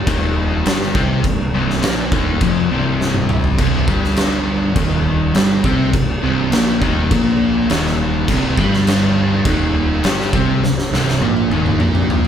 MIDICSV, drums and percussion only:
0, 0, Header, 1, 2, 480
1, 0, Start_track
1, 0, Key_signature, -3, "minor"
1, 0, Tempo, 586510
1, 1017, Time_signature, 4, 2, 24, 8
1, 10048, End_track
2, 0, Start_track
2, 0, Title_t, "Drums"
2, 58, Note_on_c, 9, 36, 104
2, 58, Note_on_c, 9, 49, 65
2, 140, Note_off_c, 9, 36, 0
2, 140, Note_off_c, 9, 49, 0
2, 537, Note_on_c, 9, 49, 57
2, 548, Note_on_c, 9, 38, 119
2, 619, Note_off_c, 9, 49, 0
2, 629, Note_off_c, 9, 38, 0
2, 669, Note_on_c, 9, 38, 36
2, 751, Note_off_c, 9, 38, 0
2, 777, Note_on_c, 9, 36, 114
2, 859, Note_off_c, 9, 36, 0
2, 1016, Note_on_c, 9, 36, 101
2, 1018, Note_on_c, 9, 49, 64
2, 1097, Note_off_c, 9, 36, 0
2, 1100, Note_off_c, 9, 49, 0
2, 1390, Note_on_c, 9, 38, 37
2, 1472, Note_off_c, 9, 38, 0
2, 1494, Note_on_c, 9, 49, 60
2, 1504, Note_on_c, 9, 38, 126
2, 1576, Note_off_c, 9, 49, 0
2, 1586, Note_off_c, 9, 38, 0
2, 1735, Note_on_c, 9, 36, 120
2, 1816, Note_off_c, 9, 36, 0
2, 1970, Note_on_c, 9, 49, 64
2, 1974, Note_on_c, 9, 36, 100
2, 2052, Note_off_c, 9, 49, 0
2, 2055, Note_off_c, 9, 36, 0
2, 2465, Note_on_c, 9, 38, 69
2, 2546, Note_off_c, 9, 38, 0
2, 2573, Note_on_c, 9, 48, 73
2, 2655, Note_off_c, 9, 48, 0
2, 2694, Note_on_c, 9, 45, 100
2, 2775, Note_off_c, 9, 45, 0
2, 2814, Note_on_c, 9, 43, 95
2, 2896, Note_off_c, 9, 43, 0
2, 2934, Note_on_c, 9, 36, 113
2, 2936, Note_on_c, 9, 49, 75
2, 3016, Note_off_c, 9, 36, 0
2, 3018, Note_off_c, 9, 49, 0
2, 3174, Note_on_c, 9, 36, 103
2, 3255, Note_off_c, 9, 36, 0
2, 3307, Note_on_c, 9, 38, 36
2, 3388, Note_off_c, 9, 38, 0
2, 3408, Note_on_c, 9, 49, 72
2, 3419, Note_on_c, 9, 38, 115
2, 3490, Note_off_c, 9, 49, 0
2, 3500, Note_off_c, 9, 38, 0
2, 3894, Note_on_c, 9, 36, 113
2, 3894, Note_on_c, 9, 49, 76
2, 3975, Note_off_c, 9, 49, 0
2, 3976, Note_off_c, 9, 36, 0
2, 4375, Note_on_c, 9, 49, 64
2, 4386, Note_on_c, 9, 38, 110
2, 4457, Note_off_c, 9, 49, 0
2, 4468, Note_off_c, 9, 38, 0
2, 4616, Note_on_c, 9, 36, 112
2, 4698, Note_off_c, 9, 36, 0
2, 4857, Note_on_c, 9, 36, 102
2, 4858, Note_on_c, 9, 49, 67
2, 4939, Note_off_c, 9, 36, 0
2, 4940, Note_off_c, 9, 49, 0
2, 5337, Note_on_c, 9, 49, 70
2, 5347, Note_on_c, 9, 38, 111
2, 5418, Note_off_c, 9, 49, 0
2, 5429, Note_off_c, 9, 38, 0
2, 5579, Note_on_c, 9, 36, 107
2, 5660, Note_off_c, 9, 36, 0
2, 5820, Note_on_c, 9, 36, 112
2, 5822, Note_on_c, 9, 49, 61
2, 5901, Note_off_c, 9, 36, 0
2, 5904, Note_off_c, 9, 49, 0
2, 6299, Note_on_c, 9, 49, 65
2, 6309, Note_on_c, 9, 38, 107
2, 6381, Note_off_c, 9, 49, 0
2, 6391, Note_off_c, 9, 38, 0
2, 6436, Note_on_c, 9, 38, 39
2, 6517, Note_off_c, 9, 38, 0
2, 6778, Note_on_c, 9, 36, 110
2, 6779, Note_on_c, 9, 49, 72
2, 6860, Note_off_c, 9, 36, 0
2, 6861, Note_off_c, 9, 49, 0
2, 7018, Note_on_c, 9, 36, 112
2, 7100, Note_off_c, 9, 36, 0
2, 7149, Note_on_c, 9, 38, 39
2, 7231, Note_off_c, 9, 38, 0
2, 7260, Note_on_c, 9, 49, 73
2, 7271, Note_on_c, 9, 38, 114
2, 7342, Note_off_c, 9, 49, 0
2, 7353, Note_off_c, 9, 38, 0
2, 7736, Note_on_c, 9, 36, 113
2, 7737, Note_on_c, 9, 49, 77
2, 7818, Note_off_c, 9, 36, 0
2, 7819, Note_off_c, 9, 49, 0
2, 8214, Note_on_c, 9, 49, 70
2, 8224, Note_on_c, 9, 38, 114
2, 8295, Note_off_c, 9, 49, 0
2, 8306, Note_off_c, 9, 38, 0
2, 8348, Note_on_c, 9, 38, 37
2, 8430, Note_off_c, 9, 38, 0
2, 8455, Note_on_c, 9, 36, 108
2, 8537, Note_off_c, 9, 36, 0
2, 8705, Note_on_c, 9, 38, 68
2, 8787, Note_off_c, 9, 38, 0
2, 8828, Note_on_c, 9, 38, 63
2, 8910, Note_off_c, 9, 38, 0
2, 8950, Note_on_c, 9, 38, 82
2, 9032, Note_off_c, 9, 38, 0
2, 9068, Note_on_c, 9, 38, 68
2, 9150, Note_off_c, 9, 38, 0
2, 9181, Note_on_c, 9, 48, 86
2, 9263, Note_off_c, 9, 48, 0
2, 9302, Note_on_c, 9, 48, 72
2, 9384, Note_off_c, 9, 48, 0
2, 9424, Note_on_c, 9, 48, 91
2, 9506, Note_off_c, 9, 48, 0
2, 9543, Note_on_c, 9, 47, 75
2, 9625, Note_off_c, 9, 47, 0
2, 9658, Note_on_c, 9, 47, 91
2, 9740, Note_off_c, 9, 47, 0
2, 9779, Note_on_c, 9, 47, 89
2, 9861, Note_off_c, 9, 47, 0
2, 9904, Note_on_c, 9, 45, 96
2, 9986, Note_off_c, 9, 45, 0
2, 10048, End_track
0, 0, End_of_file